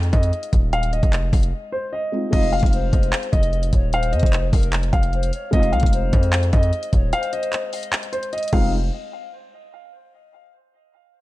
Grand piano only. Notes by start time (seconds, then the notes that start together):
0.13 D#5
0.73 F5
0.93 D#5
1.72 C5
1.93 D#5
2.32 D#5
2.53 F5
3.32 D#5
3.94 F5
4.12 D#5
4.93 F5
5.53 D#5
5.73 F5
6.53 D#5
7.13 F5
7.33 D#5
8.13 C5
8.33 D#5
8.53 F5